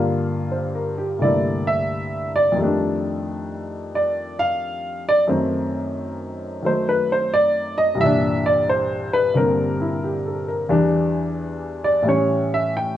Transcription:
Already playing: G2 D3 A#3 F4
0.52 C5
0.75 A#4
0.98 G4
1.19 C2 G2 D3 A3 A#3 D5
1.24 E4
1.67 E5
2.36 D5
2.52 F2 D#3
2.58 G3 A3
2.63 D4
3.95 D5
4.39 F5
5.09 D5
5.27 F#2 D#3 A3 C4
6.62 D#3 F#3 A3 C5
6.89 B4
7.12 C5
7.33 D5
7.78 D#5
7.95 C2 G2
7.99 E3 E5
8.03 A#2 D4
8.45 D5
8.69 C5
9.13 B4
9.34 G2 D3 G3 A#3 C4 A#4
9.81 E4
10.04 G4
10.26 A4
10.48 A#4
10.69 E2 E3 G3 D4
11.85 D5
12.03 A2 E3 G3
12.08 C#4 C#5
12.54 E5
12.77 G5

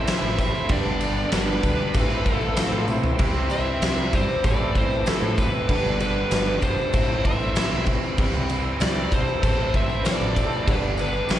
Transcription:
Already playing: A2 E3 A3 C4 E4 A4 C5 E5
0.07 A2 E3 A3 C4 E4 A4, snare, tambourine, crash
0.23 A1
0.37 E3 A3 C4 E4 A4 C5 E5, kick, tambourine, crash
0.53 A3 C4 E4, tambourine
0.68 G1 G2 D3 G3 B3 D4 G4 B4, kick, tambourine, crash
0.72 D5
0.85 G1, tambourine
0.99 D3 G3 B3 D4 G4, tambourine, crash
1.14 G3 B3 D4, tambourine
1.30 G1 G2 D3 G3 B3 D4 G4, snare, tambourine, crash
1.35 B4
1.47 tambourine
1.61 D2 D3 G3 B3 D4 G4, kick, tambourine, crash
1.79 tambourine
1.93 A1 A2 E3 A3 A#3 C4 E4 F4 A4 C#5, kick, tambourine, crash
2.09 A3 C4 E4, tambourine
2.16 A3 C4 E4
2.24 E3 A3 C4 A4, kick, tambourine, crash
2.28 E4
2.35 F4 A4
2.40 A3 C4 E4 A4, tambourine
2.57 A2 E3 A3 C4 E4 A4, snare, tambourine, crash
2.72 A2 C5, tambourine
2.87 E3 A3 C4 A4, high tom, tambourine
2.92 E4
3.03 A3 C4 E4, floor tom, tambourine
3.19 C2 C3 E3 G3 C4 E4 G4 C5, kick, crash
3.23 E4
3.34 C2, tambourine
3.49 E3 G3 G4 C5 E5, tambourine, crash
3.54 C4 E4
3.66 G3 C4 E4
3.81 C2 C3 E3 G3 C4 E4 G4, snare, tambourine, crash
4.11 G2 E3 G3 C4 E4 G4 C5, kick, tambourine, crash
4.29 tambourine
4.43 A1 A2 E3 A3 C4 E4 A4 D5, kick, tambourine, crash
4.59 A3 C4 E4
4.74 E3 A3 C4 E4 G4 A4 C5, kick, tambourine, crash
4.90 A3 C4 E4, tambourine
5.05 A2 E3 A3 C4 E4 A4, snare, tambourine, crash
5.09 E4 A4
5.22 A2
5.35 E3 A3 A4, kick, tambourine, crash
5.39 C4 E4 G4 B4
5.53 A3 C4 E4, tambourine
5.67 G1 G2 D3 G3 B3 D4 G4 B5, kick, crash
5.85 G1, tambourine
5.99 D3 G3 B3 D4 G4 B4, tambourine, crash
6.15 G3 B3 D4
6.31 G1 G2 D3 G3 B3 D4 G4, snare, tambourine, crash
6.47 tambourine
6.61 G1 D3 G3 B3 G4 A4 C5, kick, tambourine, crash
6.66 D4
6.78 tambourine
6.92 A1 A2 E3 A3 C4 E4 A4 C5, kick, tambourine, crash
6.96 C4 E4
7.09 A3 C4 E4
7.23 E3 A3 C4 E4 A4 C5 E5, kick, crash
7.40 A3 C4 E4, tambourine
7.55 A2 E3 A3 C4 E4 A4, snare, tambourine, crash
7.72 B1
7.85 E3 A3 C4 A4, kick, crash
7.90 E4
8.03 A3 C4 E4, tambourine
8.18 C2 C3 E3 G3 C4 E4 G4 C5, kick, crash
8.34 C2, tambourine
8.47 E3 G3 G4, tambourine, crash
8.52 C4 E4
8.65 G3 C4 E4
8.80 C2 C3 E3 G3 C4 E4 G4 D5, snare, tambourine, crash
8.96 tambourine
9.10 B1 E3 G3 C4 G4 A4 C5, kick, tambourine, crash
9.15 E4
9.27 tambourine
9.43 A1 A2 E3 A3 C4 E4 A4 C5, kick, tambourine, crash
9.58 A3 C4 E4
9.73 E3 A3 C4 A4 C5 E5, kick, tambourine, crash
9.77 E4
9.89 A3 C4 E4, tambourine
10.05 A2 E3 A3 C4 E4 A4 D5, snare, tambourine, crash
10.21 A1
10.35 E3 A3 C4 E4 A4, kick, tambourine, crash
10.51 A3 C4 E4, tambourine
10.66 G1 G2 D3 G3 B3 D4 G4 B4, kick, tambourine, crash
10.82 G1, tambourine
10.97 D3 G3 B3 G4, tambourine, crash
11.01 D4 B4
11.13 G3 B3 D4, tambourine
11.29 G1 G2 D3 G3 B3 D4 G4, snare, tambourine, crash

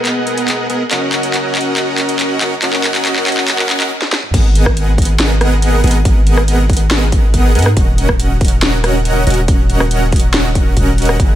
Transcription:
Already playing: B3 G#4 A#4 D#5 F#5
0.05 clap, closed hi-hat
0.27 closed hi-hat
0.38 closed hi-hat
0.48 clap, closed hi-hat
0.70 B3 G#4 A#4 D#5 F#5, closed hi-hat
0.91 C#4 F#4 A#4 D#5 F#5, clap, closed hi-hat
1.13 clap, closed hi-hat
1.23 closed hi-hat
1.34 clap, closed hi-hat
1.55 clap, closed hi-hat
1.61 closed hi-hat
1.77 clap, closed hi-hat
1.98 clap, closed hi-hat
2.09 closed hi-hat
2.19 clap, closed hi-hat
2.41 C#4 F#4 A#4 D#5 F#5, clap, closed hi-hat
2.62 C#4 F#4 A#4 D#5 F#5, clap, closed hi-hat
2.73 clap
2.84 clap, closed hi-hat
2.95 clap, closed hi-hat
3.05 clap, closed hi-hat
3.16 clap
3.27 clap, closed hi-hat
3.32 closed hi-hat
3.37 clap
3.48 clap, closed hi-hat
3.59 clap
3.70 clap, closed hi-hat
3.80 clap, closed hi-hat
4.02 snare
4.13 snare
4.23 mid tom
4.34 G#1 B3 G#4 A#4 D#5 F#5, kick, closed hi-hat, crash
4.55 closed hi-hat
4.66 kick, cross-stick
4.77 closed hi-hat
4.98 kick, closed hi-hat
5.02 closed hi-hat
5.05 closed hi-hat
5.20 snare, closed hi-hat
5.41 cross-stick, closed hi-hat
5.62 closed hi-hat
5.84 G#1 B3 G#4 A#4 D#5 F#5, closed hi-hat
5.87 closed hi-hat
5.91 closed hi-hat
6.05 G#1 B3 G#4 A#4 D#5 F#5, kick, closed hi-hat
6.27 closed hi-hat
6.37 cross-stick
6.48 closed hi-hat
6.70 kick, closed hi-hat
6.73 closed hi-hat
6.77 closed hi-hat
6.91 snare, closed hi-hat
7.12 kick, closed hi-hat
7.34 kick, closed hi-hat
7.55 G#2 B3 G#4 A#4 D#5 F#5, closed hi-hat
7.59 closed hi-hat
7.62 cross-stick, closed hi-hat
7.77 D#1 C#4 F#4 A#4 D#5 F#5, kick, closed hi-hat
7.98 closed hi-hat
8.09 kick, cross-stick
8.20 closed hi-hat
8.41 kick, closed hi-hat
8.45 closed hi-hat
8.48 closed hi-hat
8.62 snare, closed hi-hat
8.84 cross-stick, closed hi-hat
9.05 closed hi-hat
9.27 D#1 C#4 F#4 A#4 D#5 F#5, closed hi-hat
9.30 closed hi-hat
9.34 closed hi-hat
9.48 D#1 C#4 F#4 A#4 D#5 F#5, kick, closed hi-hat
9.70 closed hi-hat
9.80 cross-stick
9.91 closed hi-hat
10.12 kick, closed hi-hat
10.16 closed hi-hat
10.20 closed hi-hat
10.34 snare, closed hi-hat
10.55 kick, closed hi-hat
10.77 D#1 C#4 F#4 A#4 D#5 F#5, kick, closed hi-hat
10.98 closed hi-hat
11.02 closed hi-hat
11.05 cross-stick, closed hi-hat
11.20 F#1 E4 G#4 A#4, kick, closed hi-hat

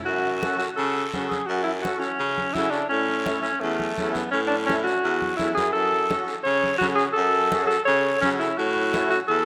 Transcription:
0.05 F#2 F#4, long guiro
0.25 high conga
0.43 C#4 F#4 A4, high conga, short guiro
0.58 F#4, short guiro
0.76 C#3 A4, high conga, long guiro
1.12 C#3 C#4 F#4 A4, high conga, short guiro
1.29 G#4, high conga, short guiro
1.46 F#2 F#4, long guiro
1.64 E4, high conga
1.82 C#4 F#4 A4, high conga, short guiro
1.99 C#4, short guiro
2.19 C#3, high conga, long guiro
2.38 high conga
2.53 C#3 C#4 E4 F#4 A4, high conga, short guiro
2.70 D4, short guiro
2.89 A2 C#4, long guiro
3.08 high conga
3.25 C#4 E4 A4, high conga, short guiro
3.42 C#4, short guiro
3.60 E2 A3, high conga, long guiro
3.80 high conga
3.97 E2 C#4 E4 A4, high conga, short guiro
4.12 B3, high conga, short guiro
4.31 A2 C#4, long guiro
4.47 D4
4.52 high conga
4.66 C#4 E4 A4, high conga, short guiro
4.84 F#4, short guiro
5.04 E2, high conga, long guiro
5.22 high conga
5.37 E2 C#4 E4 A4, high conga, short guiro
5.54 F#2 G#4, high conga, short guiro
5.73 F#2 A4, long guiro
5.93 high conga
6.09 C#4 F#4 A4, high conga, short guiro
6.28 short guiro
6.43 C#3 C#5, high conga, long guiro
6.64 high conga
6.78 C#3 C#4 F#4 A4, high conga, short guiro
6.95 G#4, short guiro
7.13 A4, long guiro
7.17 F#2
7.35 high conga
7.52 C#4 F#4 G#4, high conga, short guiro
7.67 A4, short guiro
7.85 C#3 C#5, high conga, long guiro
8.21 C#3 C#4 F#4 A4, high conga, short guiro
8.39 E4, short guiro
8.58 A2 F#4, long guiro
8.77 high conga
8.93 C#4 E4 A4, high conga, short guiro
9.10 F#4, short guiro
9.28 E2 A4, high conga, long guiro

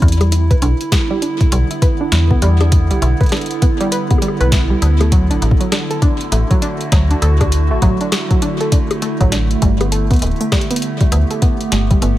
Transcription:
Already playing: E4
0.02 E2 D3, kick, closed hi-hat
0.08 closed hi-hat
0.12 closed hi-hat
0.21 G3, closed hi-hat, high bongo
0.32 E4, closed hi-hat
0.39 B3
0.51 B1 B4, kick, closed hi-hat
0.62 B1 D4, closed hi-hat
0.81 closed hi-hat
0.92 B3, kick, snare, closed hi-hat, high bongo
1.11 G3
1.22 D4, closed hi-hat
1.41 kick, closed hi-hat
1.52 B1 G3, closed hi-hat
1.71 E4, closed hi-hat
1.82 B4, kick, closed hi-hat
2.01 D4
2.12 E2, snare, closed hi-hat
2.31 B3, kick
2.42 E2 G3, closed hi-hat
2.61 D4, closed hi-hat, high bongo
2.72 kick, closed hi-hat
2.91 B1 G3, closed hi-hat
3.02 B1 E4, closed hi-hat
3.21 B4, kick, closed hi-hat
3.23 closed hi-hat
3.26 closed hi-hat
3.29 snare, closed hi-hat
3.32 D4, closed hi-hat, high bongo
3.37 closed hi-hat
3.41 closed hi-hat
3.46 closed hi-hat
3.51 closed hi-hat
3.62 B3, kick, closed hi-hat
3.81 G3, closed hi-hat
3.92 B4, closed hi-hat
4.11 B3, kick, closed hi-hat, high bongo
4.18 G3, closed hi-hat, high bongo
4.28 high bongo
4.41 B1 B4, closed hi-hat
4.52 E4, kick, snare, closed hi-hat
4.70 G3
4.82 D2, closed hi-hat
5.00 A3, closed hi-hat, high bongo
5.12 F#3, kick, closed hi-hat
5.31 A1 A3 D4, closed hi-hat
5.42 A1, closed hi-hat
5.51 kick
5.60 F#3, closed hi-hat
5.72 D4, snare, closed hi-hat, high bongo
5.91 A4, closed hi-hat
5.95 F#4
6.02 D4, kick, closed hi-hat
6.21 closed hi-hat
6.32 A1 A3, closed hi-hat
6.51 F#3, kick, closed hi-hat
6.62 D4, closed hi-hat
6.81 closed hi-hat
6.92 D2 F#3, kick, snare, closed hi-hat
7.11 D4, closed hi-hat
7.22 D2 A4, closed hi-hat
7.41 D4, kick, closed hi-hat, high bongo
7.52 closed hi-hat
7.71 A1 A3
7.82 A1 F#3, kick, closed hi-hat
8.01 D4, closed hi-hat
8.12 snare, closed hi-hat, high bongo
8.31 F#3, kick, closed hi-hat
8.42 D4, closed hi-hat
8.61 A4, closed hi-hat
8.72 D4, kick, closed hi-hat
8.91 closed hi-hat, high bongo
9.02 A3, closed hi-hat
9.21 A1 F#3, kick, closed hi-hat
9.32 D4, snare, closed hi-hat
9.51 closed hi-hat
9.62 G1 G3, kick, closed hi-hat
9.81 B3, closed hi-hat, high bongo
9.92 A4, closed hi-hat
10.11 D2 B3, kick, closed hi-hat
10.13 G4, closed hi-hat
10.16 closed hi-hat
10.19 D1, closed hi-hat
10.22 closed hi-hat
10.31 closed hi-hat
10.36 B3, closed hi-hat
10.41 A3, closed hi-hat
10.52 G3, kick, snare, closed hi-hat, high bongo
10.61 closed hi-hat
10.71 B3, closed hi-hat
10.76 closed hi-hat
10.82 closed hi-hat
11.01 G3, kick, closed hi-hat
11.12 D2 B3, closed hi-hat
11.31 A4, closed hi-hat
11.42 B3, kick, closed hi-hat
11.61 closed hi-hat
11.72 G1 A3, snare, closed hi-hat
11.91 G3, kick, closed hi-hat
12.02 G1 B3, closed hi-hat

